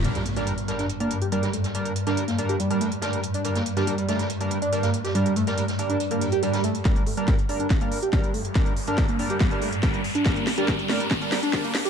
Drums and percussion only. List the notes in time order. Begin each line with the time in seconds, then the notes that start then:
0.04 closed hi-hat
0.15 snare, closed hi-hat
0.26 closed hi-hat
0.36 snare, closed hi-hat
0.47 closed hi-hat
0.58 closed hi-hat
0.68 snare, closed hi-hat
0.79 snare, closed hi-hat
0.89 closed hi-hat
1.00 closed hi-hat
1.10 closed hi-hat
1.22 closed hi-hat
1.32 closed hi-hat
1.43 snare, closed hi-hat
1.53 closed hi-hat
1.64 snare, closed hi-hat
1.75 closed hi-hat
1.85 closed hi-hat
1.96 closed hi-hat
2.07 snare, closed hi-hat
2.17 closed hi-hat
2.28 snare, closed hi-hat
2.38 closed hi-hat
2.49 closed hi-hat
2.60 closed hi-hat
2.71 closed hi-hat
2.81 closed hi-hat, open hi-hat
2.92 closed hi-hat
3.02 snare, closed hi-hat
3.13 closed hi-hat
3.23 closed hi-hat
3.34 closed hi-hat
3.44 closed hi-hat
3.55 snare, closed hi-hat
3.66 closed hi-hat
3.77 snare, closed hi-hat
3.87 closed hi-hat
3.98 closed hi-hat
4.08 snare, closed hi-hat
4.19 snare, closed hi-hat
4.30 closed hi-hat
4.41 closed hi-hat
4.50 closed hi-hat
4.62 closed hi-hat
4.73 closed hi-hat
4.83 snare, closed hi-hat
4.93 closed hi-hat
5.05 snare, closed hi-hat
5.15 closed hi-hat
5.25 closed hi-hat
5.36 closed hi-hat
5.47 snare, closed hi-hat
5.58 closed hi-hat
5.68 snare, closed hi-hat
5.79 closed hi-hat
5.90 closed hi-hat
6.00 closed hi-hat
6.11 closed hi-hat
6.21 closed hi-hat, open hi-hat
6.32 closed hi-hat
6.43 closed hi-hat
6.53 snare, closed hi-hat
6.64 closed hi-hat
6.75 closed hi-hat
6.85 kick, snare, closed hi-hat
6.96 closed hi-hat
7.07 open hi-hat
7.17 closed hi-hat
7.28 kick, snare, closed hi-hat
7.39 closed hi-hat
7.49 open hi-hat
7.60 closed hi-hat
7.70 kick, snare, closed hi-hat
7.81 closed hi-hat
7.92 open hi-hat
8.02 closed hi-hat
8.13 kick, snare, closed hi-hat
8.24 closed hi-hat
8.34 open hi-hat
8.45 closed hi-hat
8.55 kick, snare, closed hi-hat
8.66 closed hi-hat
8.77 open hi-hat
8.87 closed hi-hat
8.98 kick, snare, closed hi-hat
9.09 closed hi-hat
9.19 open hi-hat
9.30 closed hi-hat
9.40 kick, snare, closed hi-hat
9.51 closed hi-hat
9.62 open hi-hat
9.72 closed hi-hat
9.83 kick, snare, closed hi-hat
9.94 closed hi-hat
10.04 open hi-hat
10.15 closed hi-hat
10.26 kick, snare, closed hi-hat
10.36 closed hi-hat
10.47 snare, open hi-hat
10.58 closed hi-hat
10.68 kick, snare, closed hi-hat
10.79 closed hi-hat
10.89 snare, open hi-hat
11.00 closed hi-hat
11.11 kick, snare, closed hi-hat
11.22 closed hi-hat
11.32 snare, open hi-hat
11.43 closed hi-hat
11.53 kick, snare, closed hi-hat
11.64 closed hi-hat
11.75 snare, open hi-hat
11.85 closed hi-hat